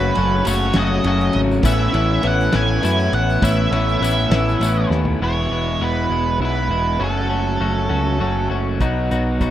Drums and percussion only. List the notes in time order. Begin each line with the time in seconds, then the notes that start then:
0.15 ride
0.45 ride, tambourine
0.62 tambourine
0.73 snare, ride
1.04 ride
1.21 tambourine
1.33 ride
1.51 tambourine
1.63 kick, tambourine, crash
1.94 ride
2.23 ride
2.41 tambourine
2.52 snare, ride
2.83 ride, tambourine
3.00 tambourine
3.13 ride
3.30 tambourine
3.42 kick, ride, tambourine
3.72 ride
3.89 tambourine
4.02 ride, tambourine
4.19 tambourine
4.31 snare, ride
4.49 tambourine
4.61 ride, tambourine
4.91 snare
5.05 floor tom
8.81 kick, closed hi-hat
9.11 closed hi-hat
9.41 kick, closed hi-hat